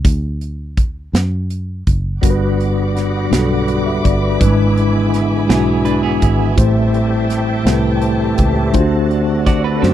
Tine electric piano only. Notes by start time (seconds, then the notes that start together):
2.22 G2 G3 D4 F#4 A#4
2.30 B4
3.30 G3 D4 F#4 G4
3.38 A4
3.68 F#4 D5
3.86 G4 E5
4.05 F#4 D5
4.22 D4 B4
4.40 G#2 G3 D4 E4 B4
4.46 G#3
5.47 G#3 D4 E4 F#4
6.56 A2 A3 E4 G4 C5
7.64 A3 E4 G4 A4
7.73 B4
8.02 C5 A5
8.38 B4 G5
8.56 G4 E5
8.73 D3 A3 D4 F4 C5
8.81 F#4
9.82 A3 D4 F#4 C5